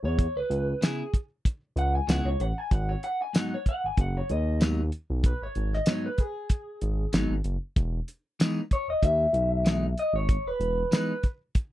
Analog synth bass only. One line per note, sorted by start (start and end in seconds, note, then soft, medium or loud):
0.03 0.27 E2 medium
0.35 0.43 C#2 soft
0.50 0.74 C#2 medium
1.76 2.00 C#2 medium
2.08 2.21 C#2 medium
2.25 2.36 C#2 medium
2.40 2.53 A1 medium
2.71 2.95 G#1 loud
3.84 3.91 G#1 soft
3.98 4.22 F#1 medium
4.30 4.91 D#2 medium
5.10 5.34 B1 medium
5.41 5.48 G#1 soft
5.56 5.80 G#1 medium
6.82 7.06 G#1 medium
7.13 7.26 G#1 loud
7.30 7.41 G#1 medium
7.44 7.57 F#1 medium
7.76 8.00 E1 loud
8.87 8.95 E1 soft
9.02 9.27 D#2 loud
9.33 9.94 B1 loud
10.13 10.38 G#1 medium
10.45 10.52 E1 soft
10.60 10.84 E1 medium